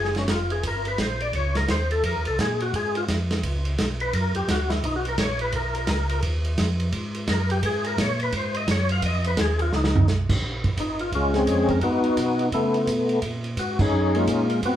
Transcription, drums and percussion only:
0.05 snare soft
0.15 snare soft
0.15 ride soft
0.28 kick soft
0.28 snare medium
0.28 hi-hat pedal medium
0.28 ride medium
0.50 ride soft
0.63 kick soft
0.63 ride medium
0.85 ride soft
0.98 kick soft
0.98 snare medium
0.98 hi-hat pedal medium
0.98 ride medium
1.20 ride soft
1.33 kick soft
1.33 ride medium
1.55 snare soft
1.55 ride medium
1.68 kick soft
1.68 snare medium
1.68 hi-hat pedal medium
1.68 ride medium
1.91 ride medium
2.03 kick soft
2.03 ride medium
2.25 ride soft
2.39 kick soft
2.39 snare medium
2.39 hi-hat pedal medium
2.39 ride medium
2.60 ride soft
2.74 kick soft
2.74 ride medium
2.95 ride soft
3.08 kick soft
3.08 snare medium
3.08 hi-hat pedal medium
3.08 ride medium
3.31 snare medium
3.31 ride medium
3.43 kick soft
3.43 ride medium
3.65 ride soft
3.78 kick soft
3.78 snare medium
3.78 hi-hat pedal medium
3.78 ride medium
4.00 ride soft
4.13 kick soft
4.13 ride medium
4.35 ride medium
4.48 kick soft
4.48 snare medium
4.48 hi-hat pedal medium
4.48 ride medium
4.70 snare medium
4.70 ride medium
4.83 kick soft
4.83 ride medium
5.05 ride soft
5.18 kick soft
5.18 snare medium
5.18 hi-hat pedal medium
5.18 ride medium
5.39 ride soft
5.52 kick soft
5.52 ride medium
5.75 ride medium
5.87 kick soft
5.87 snare medium
5.87 hi-hat pedal medium
5.87 ride medium
6.09 ride medium
6.22 kick soft
6.22 ride medium
6.45 ride medium
6.58 kick soft
6.58 snare medium
6.58 hi-hat pedal medium
6.58 ride medium
6.80 ride soft
6.92 kick soft
6.92 ride medium
7.15 ride medium
7.28 kick soft
7.28 snare medium
7.28 hi-hat pedal medium
7.28 ride medium
7.50 ride medium
7.63 kick soft
7.63 ride medium
7.84 ride medium
7.98 kick soft
7.98 snare medium
7.98 hi-hat pedal medium
7.98 ride medium
8.20 ride soft
8.32 kick soft
8.32 ride medium
8.54 ride soft
8.68 kick soft
8.68 snare medium
8.68 hi-hat pedal medium
8.68 ride medium
8.89 ride medium
9.02 kick soft
9.02 ride medium
9.24 ride medium
9.37 kick soft
9.37 snare medium
9.37 hi-hat pedal medium
9.37 ride medium
9.59 ride medium
9.73 snare medium
9.84 snare medium
9.96 floor tom loud
10.08 snare medium
10.08 hi-hat pedal medium
10.29 kick medium
10.29 crash medium
10.42 kick soft
10.64 kick medium
10.64 ride soft
10.77 kick soft
10.77 hi-hat pedal medium
10.77 ride medium
10.99 ride soft
11.12 kick soft
11.12 ride medium
11.34 snare soft
11.34 ride soft
11.47 kick soft
11.47 hi-hat pedal soft
11.47 ride medium
11.68 kick soft
11.68 ride soft
11.81 kick soft
11.81 ride medium
12.04 ride soft
12.17 kick soft
12.17 hi-hat pedal medium
12.17 ride medium
12.39 ride soft
12.52 kick soft
12.52 ride medium
12.74 ride soft
12.87 kick soft
12.87 hi-hat pedal medium
12.87 ride medium
13.09 ride soft
13.22 kick soft
13.22 ride medium
13.44 ride soft
13.57 kick soft
13.57 hi-hat pedal medium
13.57 ride medium
13.79 kick medium
13.79 crash medium
14.15 ride soft
14.27 kick soft
14.27 hi-hat pedal medium
14.27 ride medium
14.50 ride soft
14.63 kick soft
14.63 ride medium

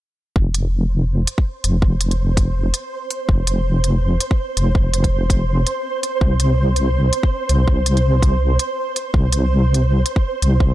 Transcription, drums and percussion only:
0.36 kick loud
0.54 closed hi-hat medium
1.27 closed hi-hat medium
1.38 kick loud
1.64 closed hi-hat medium
1.82 kick loud
2.01 closed hi-hat medium
2.11 closed hi-hat soft
2.37 kick loud
2.37 closed hi-hat medium
2.74 closed hi-hat medium
3.11 closed hi-hat medium
3.29 kick loud
3.47 closed hi-hat medium
3.84 closed hi-hat medium
4.21 closed hi-hat medium
4.31 kick loud
4.57 closed hi-hat medium
4.75 kick loud
4.94 closed hi-hat medium
5.04 kick medium
5.04 closed hi-hat soft
5.30 kick loud
5.30 closed hi-hat medium
5.67 closed hi-hat medium
6.03 closed hi-hat medium
6.21 kick loud
6.40 closed hi-hat medium
6.76 closed hi-hat medium
7.13 closed hi-hat medium
7.23 kick loud
7.49 closed hi-hat medium
7.68 kick loud
7.86 closed hi-hat medium
7.97 closed hi-hat soft
8.22 kick loud
8.22 closed hi-hat medium
8.59 closed hi-hat medium
8.96 closed hi-hat medium
9.14 kick loud
9.33 closed hi-hat medium
9.74 closed hi-hat medium
10.06 closed hi-hat medium
10.16 kick loud
10.42 closed hi-hat medium
10.60 kick loud

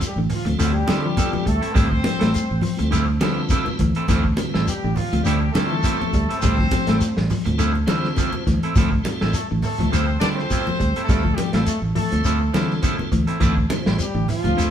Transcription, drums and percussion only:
0.01 closed hi-hat medium
0.01 high conga soft
0.01 shekere medium
0.29 open hi-hat medium
0.29 low conga medium
0.29 shekere soft
0.45 closed hi-hat medium
0.45 low conga medium
0.58 closed hi-hat medium
0.58 high conga soft
0.58 shekere loud
0.88 snare medium
0.88 closed hi-hat medium
0.88 high conga medium
0.88 shekere soft
1.17 kick medium
1.17 closed hi-hat medium
1.17 high conga medium
1.17 shekere medium
1.33 high conga medium
1.46 kick medium
1.46 closed hi-hat medium
1.46 shekere soft
1.62 closed hi-hat medium
1.75 kick loud
1.75 closed hi-hat medium
1.75 high conga soft
1.75 low conga medium
1.75 shekere medium
1.91 kick medium
2.04 closed hi-hat medium
2.04 high conga loud
2.04 shekere soft
2.21 snare medium
2.21 closed hi-hat medium
2.33 snare soft
2.33 closed hi-hat medium
2.33 high conga soft
2.33 shekere medium
2.61 open hi-hat medium
2.61 low conga medium
2.61 shekere soft
2.79 closed hi-hat medium
2.91 snare soft
2.91 closed hi-hat medium
2.91 high conga soft
2.91 shekere loud
3.21 snare medium
3.21 closed hi-hat medium
3.21 high conga loud
3.21 shekere soft
3.49 kick medium
3.49 closed hi-hat medium
3.49 high conga medium
3.49 shekere medium
3.66 high conga medium
3.78 kick medium
3.78 closed hi-hat soft
3.78 shekere soft
3.95 closed hi-hat soft
4.08 kick loud
4.08 closed hi-hat medium
4.08 high conga soft
4.08 low conga medium
4.08 shekere medium
4.24 kick medium
4.37 closed hi-hat medium
4.37 high conga loud
4.37 shekere soft
4.54 snare medium
4.67 closed hi-hat medium
4.67 high conga soft
4.67 shekere loud
4.96 open hi-hat medium
4.96 low conga medium
4.96 shekere soft
5.13 closed hi-hat medium
5.25 closed hi-hat medium
5.25 high conga soft
5.25 shekere medium
5.54 snare medium
5.54 closed hi-hat medium
5.54 high conga loud
5.54 shekere soft
5.83 kick medium
5.83 closed hi-hat medium
5.83 high conga medium
5.83 shekere medium
6.02 high conga medium
6.13 kick medium
6.13 closed hi-hat medium
6.13 shekere soft
6.30 closed hi-hat medium
6.42 kick loud
6.42 closed hi-hat medium
6.42 high conga soft
6.42 low conga medium
6.42 shekere medium
6.58 kick medium
6.58 snare soft
6.71 kick medium
6.71 snare soft
6.71 closed hi-hat medium
6.71 high conga loud
6.71 shekere soft
6.87 snare medium
6.87 closed hi-hat soft
7.01 snare soft
7.01 closed hi-hat medium
7.01 high conga soft
7.01 shekere medium
7.17 snare medium
7.30 open hi-hat medium
7.30 low conga medium
7.30 shekere soft
7.46 closed hi-hat medium
7.46 low conga medium
7.59 snare soft
7.59 closed hi-hat medium
7.59 shekere medium
7.75 high conga medium
7.87 snare medium
7.87 closed hi-hat soft
7.87 high conga loud
7.87 shekere soft
8.04 snare soft
8.16 kick medium
8.16 closed hi-hat medium
8.16 high conga medium
8.16 shekere medium
8.33 high conga medium
8.47 kick medium
8.47 snare soft
8.47 closed hi-hat soft
8.47 shekere soft
8.63 closed hi-hat soft
8.76 kick loud
8.76 closed hi-hat medium
8.76 high conga soft
8.76 low conga medium
8.76 shekere medium
8.92 kick medium
9.05 snare soft
9.05 closed hi-hat soft
9.05 high conga loud
9.05 shekere soft
9.21 snare medium
9.33 closed hi-hat medium
9.33 high conga soft
9.33 shekere medium
9.62 open hi-hat medium
9.62 low conga medium
9.62 shekere soft
9.79 closed hi-hat medium
9.79 low conga medium
9.92 snare soft
9.92 closed hi-hat medium
9.92 high conga soft
9.92 shekere medium
10.21 snare medium
10.21 closed hi-hat medium
10.21 high conga medium
10.21 shekere soft
10.39 snare soft
10.50 kick medium
10.50 closed hi-hat medium
10.50 high conga medium
10.50 shekere medium
10.67 high conga medium
10.80 kick medium
10.80 closed hi-hat medium
10.80 shekere soft
10.96 closed hi-hat soft
11.09 kick loud
11.09 closed hi-hat medium
11.09 high conga soft
11.09 low conga medium
11.09 shekere medium
11.25 kick medium
11.38 closed hi-hat medium
11.38 high conga loud
11.38 shekere soft
11.53 snare medium
11.53 closed hi-hat medium
11.66 closed hi-hat medium
11.66 high conga soft
11.66 shekere loud
11.95 open hi-hat medium
11.95 low conga medium
11.95 shekere soft
12.12 closed hi-hat medium
12.24 closed hi-hat medium
12.24 high conga soft
12.24 shekere medium
12.54 snare medium
12.54 closed hi-hat medium
12.54 high conga loud
12.54 shekere soft
12.71 snare soft
12.83 kick medium
12.83 closed hi-hat medium
12.83 high conga medium
12.83 shekere medium
12.99 high conga medium
13.12 kick medium
13.12 closed hi-hat soft
13.12 shekere soft
13.27 closed hi-hat soft
13.40 kick loud
13.40 closed hi-hat medium
13.40 high conga soft
13.40 low conga medium
13.40 shekere medium
13.57 kick medium
13.70 snare soft
13.70 closed hi-hat soft
13.70 high conga loud
13.70 shekere soft
13.86 snare medium
13.98 closed hi-hat medium
13.98 high conga soft
13.98 shekere loud
14.28 open hi-hat medium
14.28 low conga medium
14.28 shekere soft
14.44 closed hi-hat medium
14.44 low conga medium
14.57 closed hi-hat medium
14.57 high conga soft
14.57 shekere medium

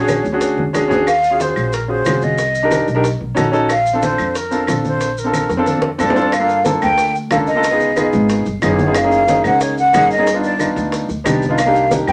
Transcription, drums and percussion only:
0.08 high bongo soft
0.08 high conga medium
0.08 claves medium
0.08 maracas medium
0.25 high bongo soft
0.25 high conga soft
0.25 maracas soft
0.41 high bongo medium
0.41 high conga soft
0.41 maracas medium
0.58 high bongo soft
0.58 high conga medium
0.74 high bongo medium
0.74 low bongo medium
0.74 claves medium
0.74 maracas medium
0.91 high bongo soft
0.91 low conga loud
0.91 maracas soft
1.07 high bongo medium
1.07 high conga soft
1.07 claves medium
1.07 maracas medium
1.23 high conga soft
1.23 maracas medium
1.40 high bongo medium
1.40 high conga medium
1.40 maracas medium
1.56 high conga soft
1.56 claves medium
1.56 maracas soft
1.73 high bongo medium
1.73 high conga soft
1.73 maracas medium
1.89 high conga soft
2.05 high bongo medium
2.05 low bongo medium
2.05 high conga medium
2.05 claves medium
2.05 maracas medium
2.21 high conga medium
2.21 maracas soft
2.38 high bongo medium
2.38 high conga soft
2.38 maracas medium
2.55 high conga soft
2.55 maracas soft
2.71 high bongo medium
2.71 high conga medium
2.71 claves medium
2.71 maracas medium
2.88 high bongo soft
2.88 high conga soft
2.88 maracas soft
3.04 high bongo medium
3.04 maracas medium
3.21 high bongo soft
3.21 high conga soft
3.37 high bongo medium
3.37 low bongo medium
3.37 high conga medium
3.37 claves medium
3.37 maracas medium
3.53 high bongo soft
3.53 maracas soft
3.69 high bongo medium
3.69 high conga soft
3.69 claves medium
3.69 maracas medium
3.86 high conga soft
3.86 maracas medium
4.02 high bongo medium
4.02 high conga medium
4.02 maracas medium
4.18 claves medium
4.18 maracas soft
4.35 high bongo medium
4.35 high conga soft
4.35 maracas medium
4.52 high conga soft
4.52 maracas medium
4.67 high bongo medium
4.67 low bongo medium
4.67 high conga medium
4.67 claves medium
4.67 maracas medium
4.85 high conga medium
4.85 maracas soft
5.01 high bongo medium
5.01 maracas medium
5.17 high conga soft
5.17 maracas medium
5.33 high bongo soft
5.33 high conga medium
5.33 claves medium
5.33 maracas medium
5.49 high bongo medium
5.49 maracas soft
5.66 high bongo medium
5.66 high conga medium
5.66 maracas medium
5.77 high conga medium
5.82 high bongo medium
5.99 low bongo medium
5.99 low conga medium
5.99 claves medium
5.99 maracas medium
6.10 low conga medium
6.16 low bongo medium
6.16 maracas soft
6.21 low conga medium
6.32 high bongo medium
6.32 high conga soft
6.32 claves medium
6.32 maracas medium
6.49 high bongo soft
6.49 high conga soft
6.49 maracas soft
6.65 high bongo medium
6.65 high conga loud
6.65 maracas medium
6.82 high conga soft
6.82 low conga medium
6.82 claves medium
6.82 maracas soft
6.98 high bongo medium
6.98 high conga soft
6.98 maracas medium
7.15 high bongo soft
7.15 high conga soft
7.15 maracas soft
7.31 high bongo medium
7.31 low bongo medium
7.31 high conga medium
7.31 claves medium
7.31 maracas medium
7.47 high bongo soft
7.47 maracas soft
7.63 high bongo medium
7.63 high conga soft
7.63 maracas medium
7.80 high bongo soft
7.80 high conga soft
7.80 maracas soft
7.96 high bongo medium
7.96 high conga medium
7.96 claves medium
7.96 maracas medium
8.13 maracas soft
8.29 high bongo medium
8.29 high conga soft
8.29 maracas medium
8.46 high bongo soft
8.46 high conga soft
8.46 maracas soft
8.62 high bongo medium
8.62 low bongo medium
8.62 high conga medium
8.62 claves medium
8.62 maracas medium
8.79 high conga medium
8.79 maracas soft
8.95 high bongo medium
8.95 claves medium
8.95 maracas medium
9.11 high bongo soft
9.11 high conga soft
9.11 maracas soft
9.28 high bongo medium
9.28 high conga loud
9.28 maracas medium
9.44 high conga soft
9.44 low conga medium
9.44 claves medium
9.44 maracas soft
9.61 high bongo medium
9.61 high conga soft
9.61 maracas medium
9.77 high bongo soft
9.77 high conga soft
9.77 maracas soft
9.94 high bongo medium
9.94 low bongo medium
9.94 high conga medium
9.94 claves medium
9.94 maracas medium
10.11 high bongo soft
10.11 maracas soft
10.27 high bongo medium
10.27 high conga soft
10.27 maracas medium
10.43 high bongo soft
10.43 high conga soft
10.43 maracas soft
10.60 high bongo medium
10.60 high conga medium
10.60 claves medium
10.60 maracas medium
10.77 high conga soft
10.77 maracas soft
10.92 high bongo medium
10.92 high conga soft
10.92 maracas medium
11.09 high bongo soft
11.09 high conga soft
11.09 maracas soft
11.25 high bongo medium
11.25 low bongo medium
11.25 high conga medium
11.25 claves medium
11.25 maracas medium
11.42 high conga medium
11.42 maracas soft
11.58 high bongo medium
11.58 high conga soft
11.58 claves medium
11.58 maracas medium
11.75 high bongo soft
11.75 high conga soft
11.75 maracas soft
11.91 high bongo medium
11.91 high conga loud
11.91 maracas medium
12.07 high conga soft
12.07 low conga medium
12.07 claves medium
12.07 maracas soft

